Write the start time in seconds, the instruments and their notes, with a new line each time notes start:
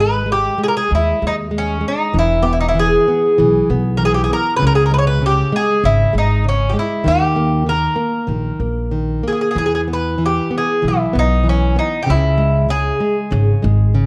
Already playing: upright bass G#1, nylon-string guitar G#3
0.00 bouzouki B4
0.26 nylon-string guitar G#3
0.32 bouzouki G4
0.58 nylon-string guitar G#3
0.64 bouzouki G#4
0.68 bouzouki A#4
0.77 bouzouki G#4
0.91 upright bass D#2, nylon-string guitar G#3, bouzouki E4
1.22 upright bass D#2, nylon-string guitar G#3
1.27 bouzouki D#4
1.51 nylon-string guitar G#3
1.58 bouzouki C#4
1.81 nylon-string guitar G#3
1.88 bouzouki D#4
2.13 upright bass E1, nylon-string guitar E3
2.19 bouzouki E4
2.43 nylon-string guitar B3, bouzouki G4
2.53 bouzouki E4
2.60 bouzouki D#4
2.69 bouzouki E4
2.75 nylon-string guitar E3
2.79 bouzouki G#4
3.08 nylon-string guitar B3
3.38 upright bass B1, nylon-string guitar E3
3.70 upright bass B1, nylon-string guitar B3
3.97 nylon-string guitar E3, bouzouki A#4
4.05 bouzouki G#4
4.14 bouzouki G4
4.24 bouzouki G#4
4.30 nylon-string guitar B3, bouzouki A#4
4.56 nylon-string guitar C#3, bouzouki B4
4.62 upright bass C#2
4.67 bouzouki A#4
4.75 bouzouki G#4
4.86 bouzouki A#4
4.91 nylon-string guitar G#3, bouzouki B4
4.98 bouzouki C#5
5.07 bouzouki B4
5.22 nylon-string guitar C#3
5.26 bouzouki G4
5.52 nylon-string guitar G#3, bouzouki G#4
5.84 upright bass G#1, nylon-string guitar C#3, bouzouki E4
6.13 upright bass G#1, nylon-string guitar G#3
6.18 bouzouki D#4
6.44 nylon-string guitar C#3
6.49 bouzouki C#4
6.69 bouzouki G4
6.74 nylon-string guitar G#3
6.79 bouzouki E4
7.04 upright bass D#2, nylon-string guitar D#3, bouzouki G4
7.36 nylon-string guitar A#3
7.66 nylon-string guitar D#3, bouzouki A#4
7.96 nylon-string guitar A#3
8.27 upright bass A#1, nylon-string guitar D#3
8.60 upright bass A#1, nylon-string guitar A#3
8.91 nylon-string guitar D#3
9.23 nylon-string guitar A#3
9.28 bouzouki G#4
9.33 bouzouki G#4
9.41 bouzouki G#4
9.51 bouzouki G#4
9.55 upright bass E2, nylon-string guitar E3, bouzouki G#4
9.66 bouzouki G#4
9.75 bouzouki G#4
9.88 nylon-string guitar B3
9.93 bouzouki B4
10.18 nylon-string guitar E3
10.26 bouzouki G4
10.51 nylon-string guitar B3
10.58 bouzouki G#4
10.82 upright bass B1, nylon-string guitar E3
10.88 bouzouki E4
11.13 upright bass B1, nylon-string guitar B3
11.19 bouzouki D#4
11.44 nylon-string guitar E3
11.49 bouzouki C#4
11.76 nylon-string guitar B3, bouzouki D#4
12.03 nylon-string guitar C#3, bouzouki G4
12.09 upright bass C#2, bouzouki E4
12.38 nylon-string guitar G#3
12.69 nylon-string guitar C#3, bouzouki G#4
13.00 nylon-string guitar G#3
13.31 upright bass G#1, nylon-string guitar C#3
13.62 upright bass G#1, nylon-string guitar G#3
13.95 nylon-string guitar C#3